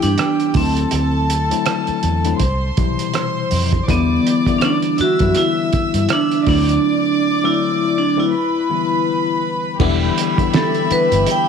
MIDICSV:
0, 0, Header, 1, 7, 480
1, 0, Start_track
1, 0, Key_signature, 1, "minor"
1, 0, Tempo, 739827
1, 598, Time_signature, 4, 2, 24, 8
1, 7451, End_track
2, 0, Start_track
2, 0, Title_t, "Violin section"
2, 0, Program_c, 0, 48
2, 0, Note_on_c, 0, 67, 73
2, 0, Note_on_c, 0, 79, 89
2, 342, Note_off_c, 0, 67, 0
2, 342, Note_off_c, 0, 79, 0
2, 357, Note_on_c, 0, 81, 94
2, 359, Note_on_c, 0, 69, 77
2, 1534, Note_off_c, 0, 81, 0
2, 1535, Note_off_c, 0, 69, 0
2, 1562, Note_on_c, 0, 72, 75
2, 1562, Note_on_c, 0, 84, 81
2, 2501, Note_off_c, 0, 72, 0
2, 2501, Note_off_c, 0, 84, 0
2, 2513, Note_on_c, 0, 74, 78
2, 2514, Note_on_c, 0, 86, 84
2, 3221, Note_off_c, 0, 74, 0
2, 3221, Note_off_c, 0, 86, 0
2, 3239, Note_on_c, 0, 88, 75
2, 3243, Note_on_c, 0, 76, 72
2, 4178, Note_off_c, 0, 88, 0
2, 4180, Note_off_c, 0, 76, 0
2, 4195, Note_on_c, 0, 86, 91
2, 4197, Note_on_c, 0, 74, 84
2, 5371, Note_off_c, 0, 86, 0
2, 5372, Note_off_c, 0, 74, 0
2, 5394, Note_on_c, 0, 71, 76
2, 5399, Note_on_c, 0, 83, 91
2, 6334, Note_off_c, 0, 71, 0
2, 6337, Note_off_c, 0, 83, 0
2, 6364, Note_on_c, 0, 67, 75
2, 6364, Note_on_c, 0, 83, 97
2, 6365, Note_on_c, 0, 76, 85
2, 7451, Note_off_c, 0, 67, 0
2, 7451, Note_off_c, 0, 76, 0
2, 7451, Note_off_c, 0, 83, 0
2, 7451, End_track
3, 0, Start_track
3, 0, Title_t, "Vibraphone"
3, 0, Program_c, 1, 11
3, 17, Note_on_c, 1, 62, 78
3, 368, Note_off_c, 1, 62, 0
3, 371, Note_on_c, 1, 60, 68
3, 819, Note_off_c, 1, 60, 0
3, 2532, Note_on_c, 1, 59, 84
3, 2974, Note_on_c, 1, 61, 62
3, 2980, Note_off_c, 1, 59, 0
3, 3005, Note_off_c, 1, 61, 0
3, 3015, Note_on_c, 1, 62, 81
3, 3249, Note_on_c, 1, 66, 99
3, 3253, Note_off_c, 1, 62, 0
3, 3486, Note_on_c, 1, 64, 92
3, 3490, Note_off_c, 1, 66, 0
3, 3936, Note_off_c, 1, 64, 0
3, 3974, Note_on_c, 1, 62, 93
3, 4201, Note_off_c, 1, 62, 0
3, 4208, Note_on_c, 1, 62, 84
3, 4835, Note_on_c, 1, 64, 80
3, 4840, Note_off_c, 1, 62, 0
3, 5175, Note_off_c, 1, 64, 0
3, 5179, Note_on_c, 1, 62, 86
3, 5297, Note_off_c, 1, 62, 0
3, 5317, Note_on_c, 1, 64, 69
3, 6100, Note_off_c, 1, 64, 0
3, 6849, Note_on_c, 1, 69, 71
3, 7086, Note_on_c, 1, 71, 89
3, 7088, Note_off_c, 1, 69, 0
3, 7303, Note_off_c, 1, 71, 0
3, 7336, Note_on_c, 1, 79, 95
3, 7451, Note_off_c, 1, 79, 0
3, 7451, End_track
4, 0, Start_track
4, 0, Title_t, "Tine electric piano"
4, 0, Program_c, 2, 4
4, 0, Control_c, 2, 64, 127
4, 0, Note_on_c, 2, 52, 67
4, 0, Note_on_c, 2, 55, 58
4, 0, Note_on_c, 2, 59, 57
4, 0, Note_on_c, 2, 62, 59
4, 0, Note_on_c, 2, 67, 73
4, 260, Note_off_c, 2, 52, 0
4, 262, Note_off_c, 2, 55, 0
4, 264, Note_off_c, 2, 59, 0
4, 265, Note_off_c, 2, 62, 0
4, 266, Note_off_c, 2, 67, 0
4, 359, Note_on_c, 2, 50, 61
4, 362, Note_on_c, 2, 54, 56
4, 365, Note_on_c, 2, 57, 57
4, 365, Note_on_c, 2, 60, 57
4, 367, Control_c, 2, 64, 0
4, 369, Note_on_c, 2, 64, 71
4, 468, Control_c, 2, 64, 127
4, 838, Note_off_c, 2, 50, 0
4, 840, Note_off_c, 2, 54, 0
4, 841, Note_off_c, 2, 57, 0
4, 842, Note_off_c, 2, 60, 0
4, 844, Note_off_c, 2, 64, 0
4, 974, Note_on_c, 2, 50, 69
4, 978, Note_on_c, 2, 54, 65
4, 981, Note_on_c, 2, 57, 71
4, 983, Note_on_c, 2, 60, 72
4, 986, Note_on_c, 2, 64, 84
4, 1319, Note_off_c, 2, 50, 0
4, 1321, Note_off_c, 2, 54, 0
4, 1322, Note_off_c, 2, 57, 0
4, 1323, Note_off_c, 2, 60, 0
4, 1324, Note_off_c, 2, 64, 0
4, 1459, Note_on_c, 2, 50, 78
4, 1460, Note_on_c, 2, 54, 65
4, 1463, Note_on_c, 2, 57, 69
4, 1466, Note_on_c, 2, 60, 73
4, 1467, Note_on_c, 2, 64, 83
4, 1559, Note_off_c, 2, 50, 0
4, 1559, Note_off_c, 2, 54, 0
4, 1561, Note_off_c, 2, 57, 0
4, 1562, Note_off_c, 2, 60, 0
4, 1563, Note_off_c, 2, 64, 0
4, 1566, Control_c, 2, 64, 0
4, 1685, Control_c, 2, 64, 127
4, 1798, Note_on_c, 2, 48, 74
4, 1802, Note_on_c, 2, 52, 67
4, 1802, Note_on_c, 2, 55, 72
4, 1806, Note_on_c, 2, 47, 70
4, 1808, Note_on_c, 2, 64, 80
4, 2351, Note_off_c, 2, 48, 0
4, 2353, Note_off_c, 2, 52, 0
4, 2353, Note_off_c, 2, 55, 0
4, 2355, Note_off_c, 2, 47, 0
4, 2356, Note_off_c, 2, 64, 0
4, 2519, Note_on_c, 2, 50, 84
4, 2521, Note_on_c, 2, 52, 86
4, 2522, Note_on_c, 2, 55, 79
4, 2527, Control_c, 2, 64, 0
4, 2527, Note_on_c, 2, 59, 81
4, 2527, Note_on_c, 2, 64, 95
4, 2631, Control_c, 2, 64, 127
4, 2795, Note_off_c, 2, 50, 0
4, 2796, Note_off_c, 2, 52, 0
4, 2796, Note_off_c, 2, 55, 0
4, 2799, Note_off_c, 2, 59, 0
4, 2799, Note_off_c, 2, 64, 0
4, 2904, Note_on_c, 2, 50, 66
4, 2904, Note_on_c, 2, 52, 59
4, 2908, Note_on_c, 2, 55, 61
4, 2911, Note_on_c, 2, 59, 60
4, 2914, Note_on_c, 2, 64, 75
4, 3243, Note_off_c, 2, 50, 0
4, 3243, Note_off_c, 2, 52, 0
4, 3245, Note_off_c, 2, 55, 0
4, 3247, Note_off_c, 2, 59, 0
4, 3248, Note_off_c, 2, 64, 0
4, 3377, Note_on_c, 2, 50, 68
4, 3378, Note_on_c, 2, 52, 58
4, 3382, Note_on_c, 2, 55, 58
4, 3385, Note_on_c, 2, 59, 62
4, 3386, Note_on_c, 2, 64, 74
4, 4099, Note_off_c, 2, 50, 0
4, 4100, Note_off_c, 2, 52, 0
4, 4102, Note_off_c, 2, 55, 0
4, 4104, Note_off_c, 2, 59, 0
4, 4104, Note_off_c, 2, 64, 0
4, 4199, Note_on_c, 2, 54, 65
4, 4200, Note_on_c, 2, 50, 61
4, 4205, Note_on_c, 2, 57, 64
4, 4206, Control_c, 2, 64, 0
4, 4207, Note_on_c, 2, 60, 64
4, 4207, Note_on_c, 2, 64, 75
4, 4301, Control_c, 2, 64, 127
4, 4678, Note_off_c, 2, 50, 0
4, 4678, Note_off_c, 2, 54, 0
4, 4681, Note_off_c, 2, 57, 0
4, 4682, Note_off_c, 2, 60, 0
4, 4682, Note_off_c, 2, 64, 0
4, 4823, Note_on_c, 2, 50, 66
4, 4823, Note_on_c, 2, 54, 66
4, 4826, Note_on_c, 2, 57, 64
4, 4826, Note_on_c, 2, 60, 62
4, 4828, Note_on_c, 2, 64, 69
4, 5162, Note_off_c, 2, 50, 0
4, 5162, Note_off_c, 2, 54, 0
4, 5163, Note_off_c, 2, 57, 0
4, 5164, Note_off_c, 2, 60, 0
4, 5164, Note_off_c, 2, 64, 0
4, 5298, Note_on_c, 2, 50, 65
4, 5300, Note_on_c, 2, 54, 60
4, 5303, Note_on_c, 2, 57, 57
4, 5304, Note_on_c, 2, 60, 64
4, 5306, Note_on_c, 2, 64, 72
4, 5397, Note_off_c, 2, 50, 0
4, 5398, Note_off_c, 2, 54, 0
4, 5400, Note_off_c, 2, 57, 0
4, 5400, Note_off_c, 2, 60, 0
4, 5401, Note_off_c, 2, 64, 0
4, 5405, Control_c, 2, 64, 0
4, 5506, Control_c, 2, 64, 127
4, 5640, Note_on_c, 2, 50, 58
4, 5641, Note_on_c, 2, 52, 55
4, 5643, Note_on_c, 2, 55, 59
4, 5646, Note_on_c, 2, 59, 59
4, 5648, Note_on_c, 2, 64, 72
4, 6190, Note_off_c, 2, 50, 0
4, 6190, Note_off_c, 2, 52, 0
4, 6191, Note_off_c, 2, 55, 0
4, 6193, Note_off_c, 2, 59, 0
4, 6194, Note_off_c, 2, 64, 0
4, 6356, Note_on_c, 2, 50, 110
4, 6358, Note_on_c, 2, 52, 93
4, 6362, Note_on_c, 2, 55, 97
4, 6363, Control_c, 2, 64, 0
4, 6364, Note_on_c, 2, 59, 88
4, 6366, Note_on_c, 2, 64, 114
4, 6476, Control_c, 2, 64, 127
4, 6631, Note_off_c, 2, 50, 0
4, 6632, Note_off_c, 2, 52, 0
4, 6634, Note_off_c, 2, 55, 0
4, 6635, Note_off_c, 2, 59, 0
4, 6636, Note_off_c, 2, 64, 0
4, 6740, Note_on_c, 2, 50, 67
4, 6742, Note_on_c, 2, 52, 58
4, 6743, Note_on_c, 2, 55, 59
4, 6746, Note_on_c, 2, 64, 74
4, 6748, Note_on_c, 2, 59, 59
4, 7002, Note_off_c, 2, 50, 0
4, 7003, Note_off_c, 2, 52, 0
4, 7004, Note_off_c, 2, 55, 0
4, 7005, Note_off_c, 2, 64, 0
4, 7006, Note_off_c, 2, 59, 0
4, 7077, Note_on_c, 2, 50, 61
4, 7079, Note_on_c, 2, 52, 63
4, 7082, Note_on_c, 2, 59, 59
4, 7083, Note_on_c, 2, 55, 58
4, 7085, Note_on_c, 2, 64, 70
4, 7451, Note_off_c, 2, 50, 0
4, 7451, Note_off_c, 2, 52, 0
4, 7451, Note_off_c, 2, 55, 0
4, 7451, Note_off_c, 2, 59, 0
4, 7451, Note_off_c, 2, 64, 0
4, 7451, End_track
5, 0, Start_track
5, 0, Title_t, "Fingered electric bass"
5, 0, Program_c, 3, 33
5, 22, Note_on_c, 3, 43, 67
5, 100, Note_off_c, 3, 43, 0
5, 356, Note_on_c, 3, 38, 93
5, 547, Note_off_c, 3, 38, 0
5, 600, Note_on_c, 3, 38, 93
5, 981, Note_off_c, 3, 38, 0
5, 1322, Note_on_c, 3, 40, 85
5, 1511, Note_off_c, 3, 40, 0
5, 1559, Note_on_c, 3, 36, 91
5, 1750, Note_off_c, 3, 36, 0
5, 1801, Note_on_c, 3, 35, 71
5, 1911, Note_off_c, 3, 35, 0
5, 2283, Note_on_c, 3, 41, 83
5, 2472, Note_off_c, 3, 41, 0
5, 2521, Note_on_c, 3, 40, 90
5, 2710, Note_off_c, 3, 40, 0
5, 3378, Note_on_c, 3, 42, 81
5, 3458, Note_off_c, 3, 42, 0
5, 3854, Note_on_c, 3, 43, 72
5, 3935, Note_off_c, 3, 43, 0
5, 4199, Note_on_c, 3, 38, 81
5, 4389, Note_off_c, 3, 38, 0
5, 6357, Note_on_c, 3, 28, 91
5, 6547, Note_off_c, 3, 28, 0
5, 7214, Note_on_c, 3, 31, 81
5, 7293, Note_off_c, 3, 31, 0
5, 7451, End_track
6, 0, Start_track
6, 0, Title_t, "Muted fingered electric bass strokes"
6, 1223, Note_on_c, 9, 29, 38
6, 1288, Note_off_c, 9, 29, 0
6, 3241, Note_on_c, 9, 29, 46
6, 3306, Note_off_c, 9, 29, 0
6, 3721, Note_on_c, 9, 29, 41
6, 3786, Note_off_c, 9, 29, 0
6, 7078, Note_on_c, 9, 29, 45
6, 7143, Note_off_c, 9, 29, 0
6, 7451, End_track
7, 0, Start_track
7, 0, Title_t, "Drums"
7, 15, Note_on_c, 9, 42, 54
7, 80, Note_off_c, 9, 42, 0
7, 114, Note_on_c, 9, 42, 64
7, 125, Note_on_c, 9, 37, 92
7, 179, Note_off_c, 9, 42, 0
7, 190, Note_off_c, 9, 37, 0
7, 257, Note_on_c, 9, 42, 31
7, 322, Note_off_c, 9, 42, 0
7, 350, Note_on_c, 9, 46, 62
7, 356, Note_on_c, 9, 36, 87
7, 415, Note_off_c, 9, 46, 0
7, 421, Note_off_c, 9, 36, 0
7, 497, Note_on_c, 9, 42, 46
7, 562, Note_off_c, 9, 42, 0
7, 591, Note_on_c, 9, 42, 75
7, 656, Note_off_c, 9, 42, 0
7, 842, Note_on_c, 9, 42, 67
7, 907, Note_off_c, 9, 42, 0
7, 982, Note_on_c, 9, 42, 48
7, 1047, Note_off_c, 9, 42, 0
7, 1075, Note_on_c, 9, 42, 69
7, 1080, Note_on_c, 9, 37, 101
7, 1139, Note_off_c, 9, 42, 0
7, 1145, Note_off_c, 9, 37, 0
7, 1214, Note_on_c, 9, 42, 32
7, 1279, Note_off_c, 9, 42, 0
7, 1316, Note_on_c, 9, 42, 48
7, 1381, Note_off_c, 9, 42, 0
7, 1457, Note_on_c, 9, 42, 45
7, 1522, Note_off_c, 9, 42, 0
7, 1554, Note_on_c, 9, 42, 81
7, 1558, Note_on_c, 9, 36, 75
7, 1619, Note_off_c, 9, 42, 0
7, 1623, Note_off_c, 9, 36, 0
7, 1798, Note_on_c, 9, 42, 58
7, 1802, Note_on_c, 9, 36, 87
7, 1863, Note_off_c, 9, 42, 0
7, 1867, Note_off_c, 9, 36, 0
7, 1940, Note_on_c, 9, 42, 62
7, 2005, Note_off_c, 9, 42, 0
7, 2035, Note_on_c, 9, 42, 69
7, 2045, Note_on_c, 9, 37, 83
7, 2100, Note_off_c, 9, 42, 0
7, 2110, Note_off_c, 9, 37, 0
7, 2276, Note_on_c, 9, 46, 66
7, 2341, Note_off_c, 9, 46, 0
7, 2418, Note_on_c, 9, 36, 84
7, 2421, Note_on_c, 9, 42, 43
7, 2483, Note_off_c, 9, 36, 0
7, 2486, Note_off_c, 9, 42, 0
7, 2520, Note_on_c, 9, 36, 94
7, 2522, Note_on_c, 9, 42, 87
7, 2585, Note_off_c, 9, 36, 0
7, 2587, Note_off_c, 9, 42, 0
7, 2768, Note_on_c, 9, 42, 74
7, 2833, Note_off_c, 9, 42, 0
7, 2897, Note_on_c, 9, 36, 76
7, 2901, Note_on_c, 9, 42, 47
7, 2962, Note_off_c, 9, 36, 0
7, 2966, Note_off_c, 9, 42, 0
7, 2993, Note_on_c, 9, 42, 70
7, 2999, Note_on_c, 9, 37, 96
7, 3058, Note_off_c, 9, 42, 0
7, 3064, Note_off_c, 9, 37, 0
7, 3130, Note_on_c, 9, 42, 34
7, 3195, Note_off_c, 9, 42, 0
7, 3231, Note_on_c, 9, 42, 47
7, 3296, Note_off_c, 9, 42, 0
7, 3369, Note_on_c, 9, 42, 43
7, 3376, Note_on_c, 9, 36, 78
7, 3434, Note_off_c, 9, 42, 0
7, 3441, Note_off_c, 9, 36, 0
7, 3468, Note_on_c, 9, 42, 70
7, 3476, Note_on_c, 9, 37, 33
7, 3533, Note_off_c, 9, 42, 0
7, 3540, Note_off_c, 9, 37, 0
7, 3715, Note_on_c, 9, 42, 56
7, 3721, Note_on_c, 9, 36, 84
7, 3780, Note_off_c, 9, 42, 0
7, 3786, Note_off_c, 9, 36, 0
7, 3853, Note_on_c, 9, 42, 58
7, 3918, Note_off_c, 9, 42, 0
7, 3949, Note_on_c, 9, 42, 73
7, 3960, Note_on_c, 9, 37, 92
7, 4014, Note_off_c, 9, 42, 0
7, 4025, Note_off_c, 9, 37, 0
7, 4097, Note_on_c, 9, 42, 32
7, 4162, Note_off_c, 9, 42, 0
7, 4194, Note_on_c, 9, 46, 75
7, 4198, Note_on_c, 9, 36, 95
7, 4259, Note_off_c, 9, 46, 0
7, 4262, Note_off_c, 9, 36, 0
7, 4341, Note_on_c, 9, 42, 47
7, 4406, Note_off_c, 9, 42, 0
7, 6356, Note_on_c, 9, 49, 82
7, 6358, Note_on_c, 9, 36, 103
7, 6421, Note_off_c, 9, 49, 0
7, 6422, Note_off_c, 9, 36, 0
7, 6603, Note_on_c, 9, 42, 70
7, 6668, Note_off_c, 9, 42, 0
7, 6736, Note_on_c, 9, 36, 83
7, 6740, Note_on_c, 9, 42, 46
7, 6801, Note_off_c, 9, 36, 0
7, 6805, Note_off_c, 9, 42, 0
7, 6835, Note_on_c, 9, 42, 74
7, 6841, Note_on_c, 9, 38, 110
7, 6900, Note_off_c, 9, 42, 0
7, 6906, Note_off_c, 9, 38, 0
7, 6971, Note_on_c, 9, 42, 34
7, 7036, Note_off_c, 9, 42, 0
7, 7075, Note_on_c, 9, 42, 52
7, 7140, Note_off_c, 9, 42, 0
7, 7213, Note_on_c, 9, 42, 45
7, 7278, Note_off_c, 9, 42, 0
7, 7309, Note_on_c, 9, 42, 80
7, 7374, Note_off_c, 9, 42, 0
7, 7451, End_track
0, 0, End_of_file